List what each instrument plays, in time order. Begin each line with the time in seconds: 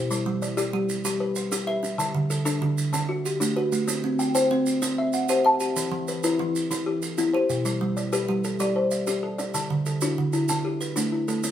Already playing: kalimba B2 G4 C5
0.11 kalimba G3, maracas
0.26 kalimba G3
0.42 kalimba D5, maracas
0.57 kalimba G4 D5, maracas
0.73 kalimba G3 G4
0.89 maracas
1.05 kalimba G3 G4, maracas
1.20 kalimba B4
1.36 kalimba C5, maracas
1.52 kalimba D4 G4, maracas
1.67 kalimba B4 E5
1.83 kalimba D4, maracas
1.98 kalimba D3, maracas
2.15 kalimba D3
2.30 kalimba A4, maracas
2.45 kalimba D4 A4, maracas
2.62 kalimba D3 D4
2.78 maracas
2.93 kalimba D3 D4, maracas
3.09 kalimba F#4
3.25 kalimba G4, maracas
3.40 kalimba A3 D4, maracas
3.56 kalimba F#4 B4
3.72 kalimba A3, maracas
3.88 kalimba C4, maracas
4.04 kalimba C4
4.19 kalimba G5, maracas
4.35 kalimba C5 G5, maracas
4.51 kalimba C4 C5
4.66 maracas
4.82 kalimba C4 C5, maracas
4.98 kalimba E5
5.13 kalimba F#5, maracas
5.29 kalimba G4 C5, maracas
5.45 kalimba E5 A5
5.60 kalimba G4, maracas
5.76 kalimba E3, maracas
5.92 kalimba E3
6.08 kalimba B4, maracas
6.24 kalimba E4 B4, maracas
6.39 kalimba E3 E4
6.56 maracas
6.71 kalimba E3 E4, maracas
6.86 kalimba G4
7.02 kalimba A4, maracas
7.18 kalimba B3 E4, maracas
7.33 kalimba G4 C5
7.50 kalimba B2, maracas
7.65 kalimba G3, maracas
7.81 kalimba G3
7.97 kalimba D5, maracas
8.13 kalimba G4 A4 B4, maracas
8.29 kalimba G3 G4
8.44 kalimba A4, maracas
8.60 kalimba G3 G4 D5, maracas
8.76 kalimba C5
8.91 kalimba E5, maracas
9.07 kalimba D4 G4, maracas
9.23 kalimba A4
9.38 kalimba D4 D5, maracas
9.54 kalimba D3, maracas
9.70 kalimba D3
9.86 kalimba A4, maracas
10.01 kalimba D4 E4 F#4, maracas
10.18 kalimba D3
10.33 kalimba E4, maracas
10.49 kalimba D3 D4 A4, maracas
10.65 kalimba G4
10.81 kalimba B4, maracas
10.96 kalimba A3 D4, maracas
11.12 kalimba E4
11.28 kalimba A3 A4, maracas
11.43 kalimba C4, maracas